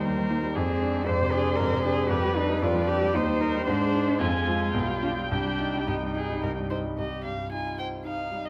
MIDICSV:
0, 0, Header, 1, 5, 480
1, 0, Start_track
1, 0, Key_signature, -3, "minor"
1, 0, Tempo, 519931
1, 513, Time_signature, 3, 2, 24, 8
1, 3875, Tempo, 557103
1, 6275, Tempo, 531915
1, 7638, End_track
2, 0, Start_track
2, 0, Title_t, "Viola"
2, 0, Program_c, 0, 41
2, 0, Note_on_c, 0, 72, 45
2, 474, Note_off_c, 0, 72, 0
2, 516, Note_on_c, 0, 74, 54
2, 1904, Note_off_c, 0, 74, 0
2, 1933, Note_on_c, 0, 71, 57
2, 2860, Note_off_c, 0, 71, 0
2, 2905, Note_on_c, 0, 72, 59
2, 3840, Note_off_c, 0, 72, 0
2, 3880, Note_on_c, 0, 80, 49
2, 4311, Note_off_c, 0, 80, 0
2, 4342, Note_on_c, 0, 79, 50
2, 6063, Note_off_c, 0, 79, 0
2, 7638, End_track
3, 0, Start_track
3, 0, Title_t, "Violin"
3, 0, Program_c, 1, 40
3, 23, Note_on_c, 1, 70, 62
3, 510, Note_on_c, 1, 68, 55
3, 524, Note_off_c, 1, 70, 0
3, 980, Note_off_c, 1, 68, 0
3, 986, Note_on_c, 1, 72, 65
3, 1934, Note_on_c, 1, 71, 68
3, 1948, Note_off_c, 1, 72, 0
3, 2411, Note_off_c, 1, 71, 0
3, 2417, Note_on_c, 1, 74, 64
3, 2909, Note_on_c, 1, 72, 63
3, 2923, Note_off_c, 1, 74, 0
3, 3145, Note_on_c, 1, 70, 63
3, 3159, Note_off_c, 1, 72, 0
3, 3376, Note_off_c, 1, 70, 0
3, 3381, Note_on_c, 1, 72, 68
3, 3871, Note_on_c, 1, 65, 58
3, 3884, Note_off_c, 1, 72, 0
3, 4823, Note_off_c, 1, 65, 0
3, 4835, Note_on_c, 1, 67, 45
3, 5265, Note_off_c, 1, 67, 0
3, 5319, Note_on_c, 1, 67, 45
3, 5387, Note_off_c, 1, 67, 0
3, 5561, Note_on_c, 1, 68, 50
3, 5791, Note_off_c, 1, 68, 0
3, 5796, Note_on_c, 1, 70, 49
3, 5865, Note_off_c, 1, 70, 0
3, 6033, Note_on_c, 1, 72, 46
3, 6101, Note_off_c, 1, 72, 0
3, 6276, Note_on_c, 1, 75, 34
3, 6499, Note_off_c, 1, 75, 0
3, 6512, Note_on_c, 1, 77, 34
3, 6750, Note_off_c, 1, 77, 0
3, 6760, Note_on_c, 1, 80, 37
3, 6994, Note_off_c, 1, 80, 0
3, 7000, Note_on_c, 1, 79, 37
3, 7073, Note_off_c, 1, 79, 0
3, 7242, Note_on_c, 1, 77, 39
3, 7602, Note_on_c, 1, 75, 37
3, 7616, Note_off_c, 1, 77, 0
3, 7638, Note_off_c, 1, 75, 0
3, 7638, End_track
4, 0, Start_track
4, 0, Title_t, "Cello"
4, 0, Program_c, 2, 42
4, 39, Note_on_c, 2, 55, 66
4, 267, Note_off_c, 2, 55, 0
4, 273, Note_on_c, 2, 58, 58
4, 346, Note_off_c, 2, 58, 0
4, 500, Note_on_c, 2, 60, 71
4, 980, Note_on_c, 2, 72, 73
4, 994, Note_off_c, 2, 60, 0
4, 1214, Note_on_c, 2, 68, 77
4, 1228, Note_off_c, 2, 72, 0
4, 1440, Note_on_c, 2, 70, 75
4, 1454, Note_off_c, 2, 68, 0
4, 1684, Note_off_c, 2, 70, 0
4, 1689, Note_on_c, 2, 68, 77
4, 1928, Note_off_c, 2, 68, 0
4, 1935, Note_on_c, 2, 67, 79
4, 2177, Note_on_c, 2, 63, 72
4, 2190, Note_off_c, 2, 67, 0
4, 2420, Note_on_c, 2, 65, 73
4, 2434, Note_off_c, 2, 63, 0
4, 2656, Note_on_c, 2, 67, 78
4, 2670, Note_off_c, 2, 65, 0
4, 2901, Note_on_c, 2, 63, 74
4, 2915, Note_off_c, 2, 67, 0
4, 3369, Note_off_c, 2, 63, 0
4, 3374, Note_on_c, 2, 62, 86
4, 3876, Note_on_c, 2, 60, 64
4, 3889, Note_off_c, 2, 62, 0
4, 4106, Note_on_c, 2, 56, 64
4, 4119, Note_off_c, 2, 60, 0
4, 4336, Note_off_c, 2, 56, 0
4, 4341, Note_on_c, 2, 59, 59
4, 4576, Note_off_c, 2, 59, 0
4, 4589, Note_on_c, 2, 62, 55
4, 4658, Note_off_c, 2, 62, 0
4, 4835, Note_on_c, 2, 62, 71
4, 5315, Note_on_c, 2, 63, 51
4, 5328, Note_off_c, 2, 62, 0
4, 6037, Note_off_c, 2, 63, 0
4, 6269, Note_on_c, 2, 67, 29
4, 6720, Note_off_c, 2, 67, 0
4, 6744, Note_on_c, 2, 65, 26
4, 7238, Note_on_c, 2, 63, 27
4, 7251, Note_off_c, 2, 65, 0
4, 7638, Note_off_c, 2, 63, 0
4, 7638, End_track
5, 0, Start_track
5, 0, Title_t, "Grand piano"
5, 0, Program_c, 3, 0
5, 0, Control_c, 3, 64, 127
5, 0, Note_on_c, 3, 39, 44
5, 0, Note_on_c, 3, 51, 41
5, 0, Note_on_c, 3, 55, 41
5, 0, Note_on_c, 3, 63, 37
5, 46, Note_off_c, 3, 39, 0
5, 46, Note_on_c, 3, 39, 46
5, 106, Note_off_c, 3, 55, 0
5, 164, Note_off_c, 3, 51, 0
5, 164, Note_on_c, 3, 51, 39
5, 279, Note_off_c, 3, 63, 0
5, 279, Note_on_c, 3, 63, 41
5, 350, Note_off_c, 3, 51, 0
5, 396, Note_on_c, 3, 55, 40
5, 468, Note_off_c, 3, 63, 0
5, 504, Note_off_c, 3, 39, 0
5, 515, Note_off_c, 3, 55, 0
5, 519, Note_on_c, 3, 41, 52
5, 529, Control_c, 3, 64, 0
5, 644, Note_on_c, 3, 56, 42
5, 660, Control_c, 3, 64, 127
5, 757, Note_on_c, 3, 62, 40
5, 829, Note_off_c, 3, 56, 0
5, 881, Note_on_c, 3, 56, 42
5, 946, Note_off_c, 3, 62, 0
5, 985, Note_off_c, 3, 41, 0
5, 999, Note_on_c, 3, 41, 48
5, 1067, Note_off_c, 3, 56, 0
5, 1118, Note_on_c, 3, 48, 48
5, 1242, Note_on_c, 3, 62, 42
5, 1304, Note_off_c, 3, 48, 0
5, 1355, Note_on_c, 3, 56, 44
5, 1425, Note_off_c, 3, 62, 0
5, 1461, Note_off_c, 3, 41, 0
5, 1475, Note_on_c, 3, 41, 50
5, 1540, Note_off_c, 3, 56, 0
5, 1592, Note_on_c, 3, 48, 47
5, 1707, Note_on_c, 3, 62, 46
5, 1777, Note_off_c, 3, 48, 0
5, 1823, Note_on_c, 3, 56, 42
5, 1894, Note_off_c, 3, 62, 0
5, 1928, Note_off_c, 3, 41, 0
5, 1940, Note_off_c, 3, 56, 0
5, 1942, Note_on_c, 3, 41, 58
5, 1958, Control_c, 3, 64, 0
5, 2054, Note_on_c, 3, 55, 48
5, 2129, Control_c, 3, 64, 127
5, 2181, Note_on_c, 3, 62, 45
5, 2248, Note_off_c, 3, 55, 0
5, 2302, Note_on_c, 3, 55, 45
5, 2372, Note_off_c, 3, 62, 0
5, 2406, Note_off_c, 3, 41, 0
5, 2420, Note_on_c, 3, 41, 48
5, 2493, Note_off_c, 3, 55, 0
5, 2535, Note_on_c, 3, 53, 48
5, 2667, Note_on_c, 3, 62, 43
5, 2729, Note_off_c, 3, 53, 0
5, 2784, Note_on_c, 3, 55, 48
5, 2855, Note_off_c, 3, 62, 0
5, 2886, Note_off_c, 3, 41, 0
5, 2902, Note_off_c, 3, 55, 0
5, 2907, Note_on_c, 3, 39, 55
5, 2917, Control_c, 3, 64, 0
5, 3017, Note_on_c, 3, 55, 43
5, 3065, Control_c, 3, 64, 127
5, 3143, Note_on_c, 3, 63, 44
5, 3213, Note_off_c, 3, 55, 0
5, 3271, Note_on_c, 3, 55, 44
5, 3338, Note_off_c, 3, 63, 0
5, 3375, Note_off_c, 3, 39, 0
5, 3390, Note_off_c, 3, 55, 0
5, 3390, Note_on_c, 3, 44, 58
5, 3402, Control_c, 3, 64, 0
5, 3517, Note_on_c, 3, 56, 44
5, 3580, Control_c, 3, 64, 127
5, 3641, Note_on_c, 3, 63, 41
5, 3707, Note_off_c, 3, 56, 0
5, 3762, Note_on_c, 3, 56, 42
5, 3831, Note_off_c, 3, 63, 0
5, 3862, Note_off_c, 3, 44, 0
5, 3879, Note_off_c, 3, 56, 0
5, 3884, Note_on_c, 3, 41, 55
5, 3892, Control_c, 3, 64, 0
5, 4007, Note_on_c, 3, 56, 41
5, 4030, Control_c, 3, 64, 127
5, 4115, Note_on_c, 3, 65, 37
5, 4185, Note_off_c, 3, 56, 0
5, 4233, Note_on_c, 3, 56, 38
5, 4298, Note_off_c, 3, 65, 0
5, 4332, Note_off_c, 3, 41, 0
5, 4344, Note_on_c, 3, 35, 48
5, 4345, Note_off_c, 3, 56, 0
5, 4356, Control_c, 3, 64, 0
5, 4466, Note_on_c, 3, 55, 37
5, 4519, Control_c, 3, 64, 127
5, 4589, Note_on_c, 3, 65, 36
5, 4656, Note_off_c, 3, 55, 0
5, 4712, Note_on_c, 3, 55, 35
5, 4780, Note_off_c, 3, 65, 0
5, 4812, Note_off_c, 3, 35, 0
5, 4830, Note_off_c, 3, 55, 0
5, 4837, Note_on_c, 3, 36, 45
5, 4842, Control_c, 3, 64, 0
5, 4951, Note_on_c, 3, 55, 35
5, 5007, Control_c, 3, 64, 127
5, 5081, Note_on_c, 3, 63, 33
5, 5147, Note_off_c, 3, 55, 0
5, 5206, Note_on_c, 3, 55, 34
5, 5273, Note_off_c, 3, 63, 0
5, 5311, Note_off_c, 3, 36, 0
5, 5324, Note_on_c, 3, 36, 38
5, 5397, Note_off_c, 3, 55, 0
5, 5451, Note_on_c, 3, 43, 35
5, 5568, Note_on_c, 3, 63, 30
5, 5638, Note_off_c, 3, 43, 0
5, 5680, Note_on_c, 3, 55, 32
5, 5756, Note_off_c, 3, 63, 0
5, 5788, Note_off_c, 3, 36, 0
5, 5800, Note_on_c, 3, 36, 36
5, 5871, Note_off_c, 3, 55, 0
5, 5919, Note_on_c, 3, 43, 34
5, 6038, Note_on_c, 3, 63, 32
5, 6110, Note_off_c, 3, 43, 0
5, 6153, Note_on_c, 3, 55, 32
5, 6227, Note_off_c, 3, 63, 0
5, 6260, Note_off_c, 3, 36, 0
5, 6272, Note_off_c, 3, 55, 0
5, 6275, Note_on_c, 3, 36, 26
5, 6292, Control_c, 3, 64, 0
5, 6463, Control_c, 3, 64, 127
5, 6515, Note_on_c, 3, 43, 20
5, 6761, Note_on_c, 3, 63, 23
5, 6901, Note_off_c, 3, 43, 0
5, 6998, Note_on_c, 3, 72, 23
5, 7144, Note_off_c, 3, 63, 0
5, 7237, Note_on_c, 3, 63, 22
5, 7381, Note_off_c, 3, 72, 0
5, 7473, Note_on_c, 3, 55, 21
5, 7618, Note_off_c, 3, 63, 0
5, 7638, Note_off_c, 3, 36, 0
5, 7638, Note_off_c, 3, 55, 0
5, 7638, End_track
0, 0, End_of_file